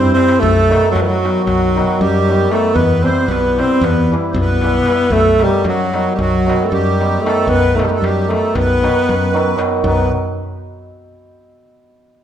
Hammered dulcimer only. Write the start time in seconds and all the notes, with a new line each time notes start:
Already playing: E3 G3 E4
0.17 E3 G3 C4 E4
0.68 D#3 F#3 B3 D#4
1.23 D#3 F#3 B3 D#4
1.76 D#3 F#3 B3 D#4
2.28 D#3 F#3 B3 D#4
2.52 D#3 F#3 B3 D#4
3.03 E3 G3 B3 E4
3.57 E3 G3 B3 E4
4.12 E3 G3 B3 E4
4.63 E3 G3 B3 E4
4.88 E3 G3 B3 E4
5.39 D#3 F#3 B3 D#4
5.93 D#3 F#3 B3 D#4
6.46 D#3 F#3 B3 D#4
7.00 D#3 F#3 B3 D#4
7.24 D#3 F#3 B3 D#4
7.75 D#3 F#3 B3 D#4
8.28 D#3 F#3 B3 D#4
8.83 D#3 F#3 B3 D#4
9.33 D#3 F#3 B3 D#4
9.56 D#3 F#3 B3 D#4
9.84 D#3 F#3 B3 D#4